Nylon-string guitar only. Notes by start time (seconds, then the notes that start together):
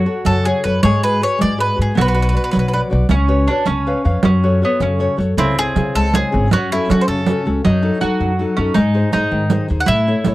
0.06 F#4 A4 C#5
0.26 C#3
0.46 F#4 A4 C#5
0.65 F#4 A4 C#5
0.83 G#3
1.03 F#4 G#4 B4
1.21 F#4 G#4 B4
1.38 G#3
1.58 F#4 G#4 B4
1.76 F#4 G#4 B4
1.95 B3
2.14 F#4 B4 D5
2.33 F#4 B4 D5
2.52 F#3
2.73 F#4 B4 D5
2.90 F#4 B4 D5
3.09 C#4
3.28 F#4 B4 C#5
3.49 F#4 B4 C#5
3.67 C#4
3.87 B4 C#5 F5
4.04 B4 C#5 F5
4.24 F#3
4.43 F#4 A4 C#5
4.62 F#4 A4 C#5
4.80 C#3
4.99 F#4 A4 C#5
5.17 F#4 A4 C#5
5.38 C#3
5.58 C#3 E4 G#4
5.77 C#3 E4 G#4
5.96 G#3
6.14 C#3 E4 G#4
6.32 C#4 E4 G#4
6.53 F#3
6.72 C#4 F#4 A4
6.89 C#4 F#4 A4
7.11 C#3
7.28 C#4 F#4 A4
7.45 C#4 F#4 A4
7.65 F#3
7.82 D#4 F#4 A4
8.00 D#4 F#4 A4
8.21 F#3
8.39 D#4 F#4 A4
8.58 D#4 F#4 A4
8.75 G#3
8.94 D#4 G#4 C5
9.12 D#4 G#4 C5
9.32 D#3
9.51 D#4 G#4 C5
9.70 D#4 G#4 C5
9.89 A3
10.07 E4 A4 C#5
10.26 E4 A4 C#5